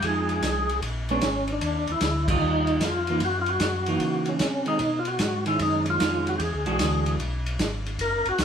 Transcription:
0.02 tonewheel organ F2, hollow-body jazz guitar F3 G#3 D#4, kick, ride
0.07 tonewheel organ G#4
0.29 ride
0.42 tonewheel organ C2, kick, snare, hi-hat pedal, ride
0.69 ride
0.82 tonewheel organ A#1, kick, ride
1.09 hollow-body jazz guitar G#3 B3 D4, tonewheel organ C#4, ride
1.21 tonewheel organ G#1, kick, snare, hi-hat pedal, ride
1.48 ride
1.52 tonewheel organ D4
1.61 tonewheel organ D#2, kick, ride
1.87 tonewheel organ D#2, ride
1.92 tonewheel organ E4
2.01 tonewheel organ D2, kick, snare, hi-hat pedal, ride
2.28 hollow-body jazz guitar D#3 G3 F4, tonewheel organ D#4, kick, crash
2.41 tonewheel organ D#2
2.67 ride
2.81 tonewheel organ F2, kick, snare, hi-hat pedal, ride
2.85 tonewheel organ F4
3.07 hollow-body jazz guitar E3 A#3 D#4, ride
3.20 tonewheel organ F#2, kick, ride
3.25 tonewheel organ F#4
3.41 tonewheel organ F4
3.46 tonewheel organ F#4, ride
3.60 tonewheel organ F#2, kick, snare, hi-hat pedal, ride
3.86 hollow-body jazz guitar E3 A#3 D#4, ride
4.00 tonewheel organ C#3, kick, ride
4.25 tonewheel organ C#4, ride
4.39 tonewheel organ C3, kick, snare, hi-hat pedal, ride
4.66 hollow-body jazz guitar D#3 G#3 C#4, tonewheel organ D#4, ride
4.79 tonewheel organ B2, kick, ride
4.99 tonewheel organ F4
5.05 tonewheel organ F#4, ride
5.19 tonewheel organ G#2, kick, snare, hi-hat pedal, ride
5.46 hollow-body jazz guitar D#3 G#3 C#4, tonewheel organ E4, ride
5.59 tonewheel organ F#2 D#4, kick, ride
5.86 ride
5.90 tonewheel organ F4
6.00 tonewheel organ F2, hollow-body jazz guitar D#3 G#3 C#4, kick, snare, hi-hat pedal, ride
6.27 tonewheel organ F#4, ride
6.38 tonewheel organ E2 G4 G#4, kick, ride
6.54 tonewheel organ D2
6.66 tonewheel organ B1, hollow-body jazz guitar E3 G#3 D4 F#4, ride
6.79 tonewheel organ D2, kick, snare, hi-hat pedal, ride
7.06 ride
7.19 tonewheel organ B1, kick, ride
7.46 ride
7.59 tonewheel organ G#1, kick, snare, hi-hat pedal, ride
7.86 ride
7.99 tonewheel organ F#1 A#4, kick, ride
8.25 tonewheel organ F#1 F#4, ride
8.38 tonewheel organ C#2, kick, snare, hi-hat pedal, ride

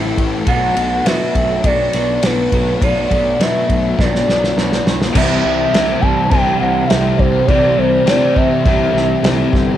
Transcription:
Already playing: picked electric bass A1, overdriven electric guitar A2 E3 C4 E4 A4, distorted electric guitar A2 E3 A3, clean electric guitar A3 C4 G4, soft synth lead E5
0.17 picked electric bass A1, distorted electric guitar E3 A3, clean electric guitar G4, kick, ride
0.45 picked electric bass B1, overdriven electric guitar B2 F#3 B3 D4 F#4, distorted electric guitar B2 F#3, clean electric guitar A3, soft synth lead F#5, kick, ride
0.50 distorted electric guitar B3
0.76 picked electric bass B1, distorted electric guitar F#3 B3, clean electric guitar A3, ride
1.05 distorted electric guitar B2 F#3, picked electric bass B2, overdriven electric guitar F#3 B3 D4, clean electric guitar F#4, soft synth lead E5, snare, ride
1.09 distorted electric guitar B3, overdriven electric guitar F#4
1.35 picked electric bass B1, clean electric guitar A3, soft synth lead E5, kick, ride
1.64 picked electric bass B1, overdriven electric guitar B2 F#3 B3 D4, clean electric guitar D4, soft synth lead D5, kick, ride
1.68 overdriven electric guitar F#4
1.93 picked electric bass B1, distorted electric guitar F#3 B3, clean electric guitar F#4, snare, ride
2.22 picked electric bass B1, distorted electric guitar B2 F#3 B3, overdriven electric guitar F#3 B3, clean electric guitar A3, soft synth lead B4, snare, ride
2.26 overdriven electric guitar D4 F#4
2.52 picked electric bass B1, distorted electric guitar F#3 B3, clean electric guitar F#4, kick, ride
2.81 picked electric bass B1, overdriven electric guitar B2 F#3 B3 D4 F#4, distorted electric guitar B2 F#3, clean electric guitar A3, soft synth lead D5, kick, ride
2.86 distorted electric guitar B3
3.11 picked electric bass B1, clean electric guitar A3, distorted electric guitar B3, kick, ride
3.15 distorted electric guitar F#3
3.39 picked electric bass B2, distorted electric guitar B2 F#3, overdriven electric guitar F#3 B3 D4 F#4, clean electric guitar F#4, soft synth lead E5, snare, ride
3.44 distorted electric guitar B3
3.69 picked electric bass B1, clean electric guitar A3, kick, ride
3.98 picked electric bass B1, overdriven electric guitar B2 F#3 B3 D4 F#4, clean electric guitar D4, soft synth lead D5, kick, snare
4.15 snare
4.28 picked electric bass B1, distorted electric guitar B3, clean electric guitar F#4, snare
4.32 distorted electric guitar F#3
4.44 snare
4.56 picked electric bass B1, distorted electric guitar B2 F#3, overdriven electric guitar F#3 B3 D4 F#4, clean electric guitar A3, snare
4.60 distorted electric guitar B3
4.73 snare
4.86 picked electric bass B1, distorted electric guitar B3, clean electric guitar F#4, snare
4.91 distorted electric guitar F#3
5.02 snare
5.14 picked electric bass C2, distorted electric guitar C3 G3 C4, overdriven electric guitar C3 G3 C4 E4 G4, clean electric guitar E3, soft synth lead E5, kick, crash
5.44 picked electric bass C2, clean electric guitar E3
5.73 picked electric bass C2, distorted electric guitar C3 G3, clean electric guitar A3, snare, crash
5.78 distorted electric guitar C4
6.01 picked electric bass C2, clean electric guitar E3, distorted electric guitar C4, soft synth lead A5, kick
6.05 distorted electric guitar G3
6.30 picked electric bass C2, distorted electric guitar C3 G3, clean electric guitar D4, soft synth lead G5, kick, crash
6.35 distorted electric guitar C4
6.59 picked electric bass C2, clean electric guitar E3, soft synth lead F#5
6.87 distorted electric guitar C3, clean electric guitar A3, soft synth lead E5, snare, crash
6.91 picked electric bass C2, distorted electric guitar G3 C4
7.18 picked electric bass C2, clean electric guitar G4, soft synth lead C5, kick
7.47 picked electric bass C2, distorted electric guitar C3 G3, clean electric guitar E3, soft synth lead D5, kick, crash
7.51 distorted electric guitar C4
7.78 picked electric bass C2, clean electric guitar E3, soft synth lead C5
8.06 picked electric bass C3, distorted electric guitar C3 G3, clean electric guitar A3, soft synth lead D5, snare, crash
8.11 distorted electric guitar C4
8.35 clean electric guitar E3, distorted electric guitar G3 C4, soft synth lead E5, kick
8.65 picked electric bass C2, distorted electric guitar C3 G3 C4, clean electric guitar D4, kick, crash
8.93 picked electric bass C2, clean electric guitar E3, snare
9.23 picked electric bass C2, distorted electric guitar C3 G3, clean electric guitar A3, snare, crash
9.28 distorted electric guitar C4
9.53 picked electric bass G1, clean electric guitar G4, kick, snare

